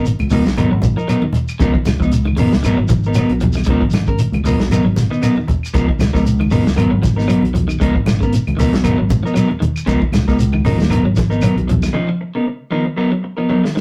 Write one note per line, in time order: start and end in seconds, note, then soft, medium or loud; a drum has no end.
0.00 0.14 G#1 medium
0.00 0.16 C#3 medium
0.05 muted clean electric guitar stroke soft
0.05 closed hi-hat medium
0.05 high conga soft
0.05 shekere medium
0.19 0.30 C#2 medium
0.19 closed hi-hat soft
0.19 high conga medium
0.19 claves medium
0.30 0.44 C#2 medium
0.30 0.53 D#3 medium
0.30 0.46 F3 medium
0.30 0.45 B3 medium
0.30 0.45 D#4 medium
0.30 0.44 A#4 medium
0.30 open hi-hat medium
0.30 low conga medium
0.30 shekere medium
0.46 0.56 B1 medium
0.46 muted clean electric guitar stroke soft
0.46 snare medium
0.46 closed hi-hat soft
0.46 shekere soft
0.57 0.71 G#1 loud
0.57 0.72 F#3 medium
0.57 0.70 B3 medium
0.57 0.70 D#4 medium
0.57 0.69 A#4 medium
0.57 closed hi-hat medium
0.57 high conga soft
0.57 low conga medium
0.57 claves medium
0.57 shekere medium
0.71 0.95 G#1 medium
0.71 0.93 F#3 medium
0.71 muted clean electric guitar stroke soft
0.82 muted clean electric guitar stroke soft
0.82 kick medium
0.82 closed hi-hat soft
0.82 high conga medium
0.82 shekere medium
0.97 1.07 F3 medium
0.97 1.09 D#4 soft
0.97 1.09 A#4 medium
0.97 shekere soft
1.08 1.21 F#3 medium
1.08 1.23 F#3 medium
1.08 1.24 B3 medium
1.08 1.23 D#4 medium
1.08 1.23 A#4 medium
1.08 closed hi-hat medium
1.08 claves medium
1.08 shekere medium
1.22 1.32 D#3 medium
1.22 muted clean electric guitar stroke soft
1.22 high conga medium
1.33 muted clean electric guitar stroke soft
1.33 closed hi-hat soft
1.33 high conga medium
1.33 low conga medium
1.33 shekere soft
1.49 claves medium
1.49 shekere medium
1.59 1.73 C#2 medium
1.59 1.72 C#3 medium
1.59 1.75 F3 medium
1.59 1.75 B3 medium
1.59 1.74 D#4 medium
1.59 1.74 A#4 loud
1.59 kick medium
1.59 closed hi-hat medium
1.59 high conga soft
1.59 low conga medium
1.59 shekere medium
1.74 1.96 D#3 medium
1.74 muted clean electric guitar stroke soft
1.74 kick medium
1.85 1.99 C#2 medium
1.85 muted clean electric guitar stroke soft
1.85 snare medium
1.85 closed hi-hat soft
1.85 high conga medium
1.85 claves medium
1.85 shekere medium
2.00 2.33 C#2 medium
2.00 2.22 F3 medium
2.00 2.11 B3 soft
2.00 2.11 D#4 medium
2.00 muted clean electric guitar stroke soft
2.00 kick medium
2.00 shekere soft
2.11 muted clean electric guitar stroke soft
2.11 closed hi-hat medium
2.11 high conga soft
2.11 shekere medium
2.25 2.36 D#3 medium
2.25 high conga medium
2.25 claves medium
2.36 2.51 G#1 medium
2.36 2.59 C#3 medium
2.36 2.53 F3 medium
2.36 2.53 B3 medium
2.36 2.53 D#4 medium
2.36 2.52 A#4 medium
2.36 open hi-hat medium
2.36 low conga medium
2.36 shekere medium
2.52 2.63 C#2 medium
2.52 muted clean electric guitar stroke soft
2.52 snare medium
2.52 shekere soft
2.63 2.77 G#1 medium
2.63 2.76 D#3 medium
2.63 2.79 F#3 medium
2.63 2.79 B3 medium
2.63 2.78 D#4 medium
2.63 2.78 A#4 medium
2.63 closed hi-hat medium
2.63 high conga soft
2.63 low conga medium
2.63 claves medium
2.63 shekere medium
2.77 3.24 G#1 medium
2.77 2.87 F#3 medium
2.77 muted clean electric guitar stroke soft
2.88 3.11 F3 medium
2.88 muted clean electric guitar stroke soft
2.88 kick medium
2.88 closed hi-hat medium
2.88 high conga medium
2.88 shekere medium
3.03 3.17 D#4 soft
3.03 3.17 A#4 soft
3.03 shekere soft
3.08 3.16 B3 soft
3.14 3.37 F#3 medium
3.14 3.31 F#3 medium
3.14 3.31 B3 medium
3.14 closed hi-hat medium
3.14 claves medium
3.14 shekere medium
3.18 3.31 D#4 medium
3.18 3.31 A#4 medium
3.29 3.63 B1 medium
3.29 muted clean electric guitar stroke soft
3.29 closed hi-hat soft
3.40 3.53 F3 medium
3.40 muted clean electric guitar stroke soft
3.40 closed hi-hat medium
3.40 high conga medium
3.40 low conga medium
3.40 shekere soft
3.53 3.65 D#3 medium
3.53 snare soft
3.53 shekere medium
3.57 claves medium
3.64 3.80 C#2 medium
3.64 3.79 C#3 medium
3.64 kick medium
3.64 closed hi-hat medium
3.64 high conga soft
3.64 low conga medium
3.64 shekere medium
3.69 3.83 F3 medium
3.69 3.83 B3 medium
3.69 3.83 D#4 medium
3.69 3.83 A#4 medium
3.81 4.27 G#1 medium
3.81 4.03 F3 medium
3.81 muted clean electric guitar stroke medium
3.81 kick medium
3.90 snare medium
3.90 closed hi-hat medium
3.90 high conga medium
3.90 shekere medium
3.94 muted clean electric guitar stroke soft
3.94 claves medium
4.07 4.29 C#3 medium
4.07 4.19 A#4 medium
4.07 muted clean electric guitar stroke soft
4.07 kick medium
4.07 shekere soft
4.18 muted clean electric guitar stroke soft
4.18 closed hi-hat medium
4.18 shekere medium
4.32 4.43 C#2 medium
4.32 closed hi-hat soft
4.32 high conga medium
4.32 claves medium
4.44 4.57 C#2 medium
4.44 4.60 F3 medium
4.44 4.60 B3 medium
4.44 4.60 D#4 medium
4.44 4.60 A#4 medium
4.44 muted clean electric guitar stroke medium
4.44 open hi-hat medium
4.44 low conga medium
4.44 shekere medium
4.58 4.69 B1 medium
4.58 muted clean electric guitar stroke soft
4.58 snare medium
4.58 closed hi-hat soft
4.58 shekere soft
4.70 4.83 G#1 medium
4.70 4.85 F#3 medium
4.70 4.84 B3 medium
4.70 4.85 D#4 medium
4.70 4.85 A#4 medium
4.70 closed hi-hat medium
4.70 high conga soft
4.70 low conga medium
4.70 claves medium
4.70 shekere medium
4.84 5.08 G#1 medium
4.84 5.07 F#3 medium
4.84 muted clean electric guitar stroke soft
4.96 muted clean electric guitar stroke soft
4.96 snare soft
4.96 closed hi-hat soft
4.96 high conga medium
4.96 shekere medium
5.10 5.21 D#3 medium
5.10 5.21 B3 soft
5.10 5.22 D#4 medium
5.10 shekere soft
5.22 5.37 F#3 medium
5.22 5.36 B3 medium
5.22 5.35 D#4 medium
5.22 5.35 A#4 medium
5.22 closed hi-hat medium
5.22 claves medium
5.22 shekere medium
5.36 5.47 D#3 medium
5.36 muted clean electric guitar stroke soft
5.36 high conga medium
5.47 muted clean electric guitar stroke soft
5.47 kick medium
5.47 closed hi-hat soft
5.47 high conga medium
5.47 low conga medium
5.47 shekere soft
5.63 claves medium
5.63 shekere medium
5.74 5.87 C#2 medium
5.74 5.87 C#3 medium
5.74 5.88 F3 medium
5.74 5.87 B3 medium
5.74 5.89 D#4 medium
5.74 5.87 A#4 loud
5.74 kick medium
5.74 closed hi-hat medium
5.74 high conga soft
5.74 low conga medium
5.74 shekere medium
5.88 6.10 D#3 medium
5.88 muted clean electric guitar stroke soft
5.88 kick medium
5.99 6.12 C#2 medium
5.99 muted clean electric guitar stroke soft
5.99 snare medium
5.99 closed hi-hat soft
5.99 high conga medium
5.99 claves medium
5.99 shekere medium
6.13 6.47 C#2 medium
6.13 6.36 F3 medium
6.13 6.24 B3 soft
6.13 6.24 D#4 medium
6.13 6.25 A#4 medium
6.13 kick medium
6.13 snare soft
6.13 shekere soft
6.25 muted clean electric guitar stroke soft
6.25 closed hi-hat medium
6.25 shekere medium
6.40 6.50 D#3 medium
6.40 high conga medium
6.40 claves medium
6.51 6.64 G#1 medium
6.51 6.73 C#3 medium
6.51 6.66 F3 medium
6.51 6.65 B3 medium
6.51 6.65 D#4 medium
6.51 6.65 A#4 medium
6.51 open hi-hat medium
6.51 low conga medium
6.51 shekere medium
6.66 6.76 C#2 medium
6.66 muted clean electric guitar stroke soft
6.66 snare medium
6.66 shekere soft
6.76 6.90 G#1 medium
6.76 6.89 D#3 medium
6.76 6.92 F#3 medium
6.76 6.92 B3 medium
6.76 6.91 A#4 medium
6.76 muted clean electric guitar stroke medium
6.76 closed hi-hat medium
6.76 high conga soft
6.76 low conga medium
6.76 claves medium
6.76 shekere medium
6.91 7.37 G#1 medium
6.91 7.01 F#3 medium
6.91 muted clean electric guitar stroke soft
7.02 7.24 F3 medium
7.02 muted clean electric guitar stroke soft
7.02 kick medium
7.02 snare soft
7.02 closed hi-hat soft
7.02 high conga medium
7.02 shekere medium
7.16 7.27 B3 soft
7.16 7.28 D#4 soft
7.16 7.28 A#4 soft
7.16 snare soft
7.16 shekere soft
7.28 7.50 F#3 medium
7.28 7.43 F#3 medium
7.28 7.43 B3 medium
7.28 7.43 D#4 medium
7.28 7.43 A#4 medium
7.28 closed hi-hat medium
7.28 claves medium
7.28 shekere medium
7.43 7.76 B1 medium
7.43 muted clean electric guitar stroke soft
7.43 closed hi-hat soft
7.43 high conga medium
7.54 7.66 F3 medium
7.54 muted clean electric guitar stroke soft
7.54 closed hi-hat soft
7.54 high conga medium
7.54 low conga medium
7.54 shekere soft
7.68 7.78 D#3 medium
7.68 claves medium
7.68 shekere medium
7.80 7.94 C#2 medium
7.80 7.92 C#3 medium
7.80 7.96 F3 medium
7.80 7.95 B3 medium
7.80 7.96 D#4 loud
7.80 7.95 A#4 loud
7.80 kick medium
7.80 closed hi-hat medium
7.80 shekere medium
7.94 8.41 G#1 medium
7.94 8.16 F3 medium
7.94 muted clean electric guitar stroke soft
7.94 kick medium
8.06 muted clean electric guitar stroke soft
8.06 snare medium
8.06 closed hi-hat medium
8.06 high conga medium
8.06 claves medium
8.06 shekere medium
8.20 8.42 C#3 medium
8.20 8.34 B3 soft
8.20 8.33 A#4 medium
8.20 muted clean electric guitar stroke medium
8.20 kick medium
8.20 shekere soft
8.32 muted clean electric guitar stroke soft
8.32 closed hi-hat medium
8.32 high conga soft
8.32 shekere medium
8.47 8.57 C#2 medium
8.47 closed hi-hat soft
8.47 high conga medium
8.47 claves medium
8.57 8.71 C#2 medium
8.57 8.79 D#3 medium
8.57 8.73 F3 medium
8.57 8.73 B3 medium
8.57 8.73 D#4 medium
8.57 8.72 A#4 medium
8.57 open hi-hat medium
8.57 low conga medium
8.57 shekere medium
8.72 8.83 B1 medium
8.72 muted clean electric guitar stroke soft
8.72 snare medium
8.72 closed hi-hat soft
8.72 high conga medium
8.72 shekere soft
8.83 8.96 G#1 medium
8.83 8.98 F#3 medium
8.83 8.98 B3 medium
8.83 8.99 D#4 medium
8.83 8.98 A#4 medium
8.83 closed hi-hat medium
8.83 high conga soft
8.83 low conga medium
8.83 claves medium
8.83 shekere medium
8.98 9.22 G#1 medium
8.98 9.20 F#3 medium
8.98 muted clean electric guitar stroke soft
9.10 muted clean electric guitar stroke soft
9.10 kick medium
9.10 closed hi-hat soft
9.10 high conga medium
9.10 shekere medium
9.23 9.33 F3 medium
9.23 9.35 B3 soft
9.23 9.36 D#4 soft
9.23 9.36 A#4 medium
9.23 shekere soft
9.34 9.47 F#3 medium
9.34 9.50 F#3 medium
9.34 9.50 B3 medium
9.34 9.50 D#4 medium
9.34 9.50 A#4 medium
9.34 closed hi-hat medium
9.34 claves medium
9.34 shekere medium
9.51 muted clean electric guitar stroke soft
9.51 high conga medium
9.60 9.82 D#3 medium
9.60 muted clean electric guitar stroke soft
9.60 closed hi-hat medium
9.60 high conga medium
9.60 low conga medium
9.60 shekere soft
9.76 claves medium
9.76 shekere medium
9.86 10.00 C#2 medium
9.86 9.99 C#3 medium
9.86 10.01 F3 medium
9.86 10.01 B3 medium
9.86 10.00 D#4 loud
9.86 10.00 A#4 loud
9.86 kick medium
9.86 closed hi-hat medium
9.86 high conga soft
9.86 low conga medium
9.86 shekere medium
10.01 10.23 D#3 medium
10.01 muted clean electric guitar stroke soft
10.01 kick medium
10.12 10.25 C#2 medium
10.12 muted clean electric guitar stroke soft
10.12 snare medium
10.12 closed hi-hat soft
10.12 high conga medium
10.12 claves medium
10.12 shekere medium
10.28 10.61 C#2 medium
10.28 10.38 B3 soft
10.28 10.38 D#4 medium
10.28 10.38 A#4 medium
10.28 kick medium
10.28 snare soft
10.28 shekere soft
10.39 muted clean electric guitar stroke soft
10.39 closed hi-hat medium
10.39 shekere medium
10.53 10.63 D#3 medium
10.53 high conga medium
10.53 claves medium
10.64 10.77 G#1 medium
10.64 10.87 C#3 medium
10.64 10.79 F3 medium
10.64 10.79 D#4 medium
10.64 10.77 A#4 medium
10.64 muted clean electric guitar stroke medium
10.64 open hi-hat medium
10.64 low conga medium
10.64 shekere medium
10.78 10.88 D#2 medium
10.78 muted clean electric guitar stroke soft
10.78 high conga medium
10.78 shekere soft
10.82 snare medium
10.89 11.02 G#1 medium
10.89 11.03 D#3 medium
10.89 11.05 F#3 medium
10.89 11.04 B3 medium
10.89 11.04 A#4 medium
10.89 muted clean electric guitar stroke medium
10.89 closed hi-hat medium
10.89 claves medium
10.89 shekere medium
10.93 high conga soft
10.93 low conga medium
11.03 11.50 G#1 medium
11.03 11.15 F#3 medium
11.03 muted clean electric guitar stroke soft
11.16 11.39 F3 medium
11.16 muted clean electric guitar stroke soft
11.16 kick medium
11.16 snare soft
11.16 closed hi-hat soft
11.16 high conga medium
11.16 shekere medium
11.30 11.42 B3 soft
11.30 11.42 D#4 soft
11.30 11.42 A#4 medium
11.30 shekere soft
11.42 11.57 F#3 medium
11.42 11.64 F#3 medium
11.42 11.56 B3 medium
11.42 11.56 A#4 medium
11.42 closed hi-hat medium
11.42 claves medium
11.42 shekere medium
11.56 11.89 B1 medium
11.56 muted clean electric guitar stroke soft
11.56 closed hi-hat soft
11.56 high conga medium
11.67 11.81 F3 medium
11.67 muted clean electric guitar stroke soft
11.67 closed hi-hat soft
11.67 high conga medium
11.67 low conga medium
11.67 shekere soft
11.83 11.92 D#3 medium
11.83 snare soft
11.83 claves medium
11.83 shekere medium
11.93 12.06 C#3 medium
11.93 12.08 F3 medium
11.93 12.08 D#4 medium
11.93 muted clean electric guitar stroke medium
12.09 12.30 F3 medium
12.09 muted clean electric guitar stroke soft
12.21 muted clean electric guitar stroke soft
12.35 12.56 C#3 medium
12.35 12.46 B3 soft
12.35 12.46 D#4 soft
12.35 12.46 A#4 medium
12.47 muted clean electric guitar stroke soft
12.71 12.94 D#3 medium
12.71 12.85 F3 medium
12.71 12.86 B3 medium
12.71 12.85 D#4 medium
12.71 12.85 A#4 medium
12.86 muted clean electric guitar stroke soft
12.96 13.11 F#3 medium
12.96 13.11 B3 medium
12.96 13.11 D#4 medium
12.96 13.11 A#4 medium
13.12 13.33 F#3 medium
13.12 muted clean electric guitar stroke medium
13.23 muted clean electric guitar stroke soft
13.37 13.47 F3 medium
13.37 13.49 B3 soft
13.37 13.49 D#4 soft
13.37 13.48 A#4 soft
13.49 13.64 F#3 medium
13.49 13.61 F#3 medium
13.49 13.63 B3 medium
13.49 13.62 D#4 medium
13.49 13.62 A#4 medium
13.49 high tom soft
13.63 13.73 D#3 medium
13.63 muted clean electric guitar stroke soft
13.63 snare medium
13.75 13.81 D#3 medium
13.75 muted clean electric guitar stroke soft
13.75 snare medium